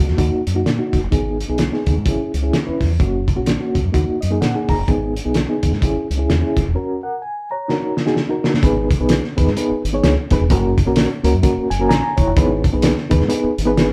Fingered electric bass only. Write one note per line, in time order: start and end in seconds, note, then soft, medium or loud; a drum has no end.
0.10 0.17 E2 medium
0.19 0.30 D#2 medium
0.34 muted fingered electric bass stroke soft
0.47 0.62 F#2 medium
0.66 0.77 A#2 medium
0.93 1.01 E1 medium
1.03 1.11 F#1 medium
1.12 1.43 G#1 medium
1.49 1.69 B1 medium
1.87 1.95 D#2 medium
1.97 2.05 G#2 medium
2.06 2.17 G#1 loud
2.34 2.50 C#2 medium
2.68 muted fingered electric bass stroke soft
2.81 2.97 E2 medium
3.00 3.31 F#1 loud
3.38 3.57 A#1 medium
3.75 3.83 C#2 medium
3.85 3.93 F#2 medium
3.94 4.05 D#2 medium
4.09 muted fingered electric bass stroke soft
4.23 4.38 F#2 medium
4.42 4.53 A#2 medium
4.69 4.77 E1 medium
4.78 4.86 F#1 medium
4.88 5.19 G#1 medium
5.26 5.45 B1 medium
5.63 5.71 D#2 medium
5.72 5.80 G#2 medium
5.82 5.93 G#1 medium
5.96 muted fingered electric bass stroke soft
6.10 6.26 C#2 medium
6.30 6.41 E2 medium
6.57 6.65 F#1 medium
6.67 6.74 E1 medium
8.63 8.94 G#1 loud
9.00 9.19 B1 medium
9.38 9.46 D#2 medium
9.47 9.55 G#2 loud
9.71 muted fingered electric bass stroke soft
9.84 10.00 G#1 medium
10.03 10.15 C#2 medium
10.31 10.39 F#1 medium
10.39 10.50 E1 medium
10.50 10.81 F#1 loud
10.87 11.06 A#1 medium
11.24 11.32 C#2 medium
11.34 11.42 F#2 loud
11.58 muted fingered electric bass stroke medium
11.70 11.86 F#1 medium
11.90 12.01 A#1 medium
12.18 12.26 E1 medium
12.27 12.35 F#1 loud
12.37 12.68 G#1 loud
12.74 12.93 B1 medium
13.11 13.19 D#2 medium
13.21 13.28 G#2 medium
13.44 muted fingered electric bass stroke medium
13.58 13.93 G#1 medium